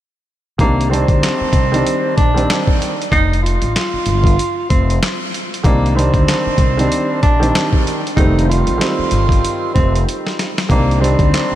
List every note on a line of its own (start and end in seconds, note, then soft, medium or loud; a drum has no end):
0.58 1.03 C2 loud
0.58 0.88 D#3 medium
0.58 0.89 G3 medium
0.58 0.88 A#3 medium
0.58 0.89 C4 medium
0.58 0.90 D4 loud
0.58 kick loud
0.58 closed hi-hat medium
0.81 closed hi-hat soft
0.90 1.65 D#3 medium
0.90 1.65 G3 medium
0.90 2.13 C4 medium
0.90 1.66 C4 medium
0.90 1.66 D4 loud
0.94 closed hi-hat medium
1.08 1.20 D2 medium
1.08 kick loud
1.08 closed hi-hat medium
1.23 snare loud
1.23 clap loud
1.23 closed hi-hat medium
1.41 muted upright bass stroke soft
1.53 1.81 C2 medium
1.53 kick medium
1.53 closed hi-hat medium
1.72 2.13 D#3 medium
1.72 2.14 G3 medium
1.72 2.15 C4 medium
1.72 2.15 D4 loud
1.72 closed hi-hat medium
1.87 closed hi-hat medium
2.17 2.45 A#1 medium
2.17 2.64 D4 medium
2.17 kick medium
2.17 closed hi-hat medium
2.34 2.92 D#3 medium
2.34 2.93 G3 medium
2.34 2.93 C4 medium
2.34 2.94 D4 medium
2.34 closed hi-hat soft
2.50 snare loud
2.50 clap medium
2.50 closed hi-hat medium
2.67 kick medium
2.82 closed hi-hat medium
3.02 closed hi-hat medium
3.12 3.56 F1 loud
3.12 3.40 D#4 loud
3.12 kick loud
3.12 closed hi-hat medium
3.33 closed hi-hat soft
3.43 4.65 F4 loud
3.43 closed hi-hat medium
3.62 3.73 A1 medium
3.62 closed hi-hat medium
3.76 snare loud
3.76 clap medium
3.76 closed hi-hat medium
3.94 muted upright bass stroke soft
4.06 4.34 G1 medium
4.06 closed hi-hat medium
4.24 kick medium
4.24 closed hi-hat medium
4.39 closed hi-hat medium
4.69 4.98 F1 medium
4.69 4.98 C4 medium
4.69 kick medium
4.69 closed hi-hat medium
4.90 closed hi-hat soft
5.03 snare loud
5.03 clap medium
5.03 closed hi-hat medium
5.34 closed hi-hat medium
5.54 closed hi-hat medium
5.63 6.08 C2 loud
5.63 5.93 D#3 medium
5.63 5.94 G3 medium
5.63 5.93 A#3 medium
5.63 5.94 C4 medium
5.63 5.95 D4 loud
5.63 kick loud
5.63 closed hi-hat medium
5.86 closed hi-hat soft
5.95 6.70 D#3 medium
5.95 6.70 G3 medium
5.95 7.18 C4 medium
5.95 6.71 C4 medium
5.95 6.71 D4 loud
5.95 closed hi-hat medium
6.14 6.25 D2 medium
6.14 kick loud
6.14 closed hi-hat soft
6.28 snare loud
6.28 clap medium
6.28 closed hi-hat medium
6.46 muted upright bass stroke soft
6.58 6.86 C2 medium
6.58 kick medium
6.58 closed hi-hat medium
6.77 7.19 D#3 medium
6.77 7.19 G3 medium
6.77 7.20 C4 medium
6.77 7.20 D4 loud
6.77 closed hi-hat medium
6.92 closed hi-hat medium
7.22 7.50 A#1 medium
7.22 7.70 D4 medium
7.22 kick medium
7.22 closed hi-hat medium
7.40 7.98 D#3 loud
7.40 7.98 G3 medium
7.40 7.99 C4 medium
7.40 7.99 D4 loud
7.40 closed hi-hat medium
7.55 snare loud
7.55 clap medium
7.55 closed hi-hat medium
7.73 kick medium
7.87 closed hi-hat medium
8.07 closed hi-hat medium
8.16 8.61 F1 loud
8.16 8.76 D#3 medium
8.16 8.76 G3 medium
8.16 8.77 A3 medium
8.16 8.77 C4 medium
8.16 8.45 D#4 loud
8.16 kick loud
8.16 closed hi-hat medium
8.39 closed hi-hat soft
8.49 9.71 F4 medium
8.49 closed hi-hat medium
8.67 8.79 A1 medium
8.67 closed hi-hat medium
8.78 10.56 D#3 medium
8.78 10.57 G3 medium
8.78 10.57 A3 medium
8.78 10.58 C4 loud
8.78 snare loud
8.78 closed hi-hat medium
8.82 clap loud
8.99 muted upright bass stroke soft
9.11 9.39 G1 medium
9.11 closed hi-hat medium
9.29 kick loud
9.29 closed hi-hat medium
9.45 closed hi-hat medium
9.74 10.03 F1 medium
9.74 10.03 C4 medium
9.74 kick medium
9.74 closed hi-hat medium
9.96 closed hi-hat soft
10.09 closed hi-hat medium
10.27 snare medium
10.27 closed hi-hat soft
10.39 snare medium
10.39 closed hi-hat medium
10.58 snare medium
10.58 closed hi-hat medium
10.69 11.14 C2 loud
10.69 10.99 D#3 medium
10.69 10.99 G3 medium
10.69 10.98 A#3 medium
10.69 11.00 C4 medium
10.69 11.00 D4 loud
10.69 kick loud
10.69 closed hi-hat medium
10.91 closed hi-hat soft
11.00 11.55 D#3 medium
11.00 11.55 G3 medium
11.00 11.55 C4 medium
11.00 11.55 D4 loud
11.04 closed hi-hat medium
11.19 11.31 D2 medium
11.19 kick loud
11.19 closed hi-hat soft
11.34 snare loud
11.34 clap loud
11.34 closed hi-hat medium
11.52 muted upright bass stroke soft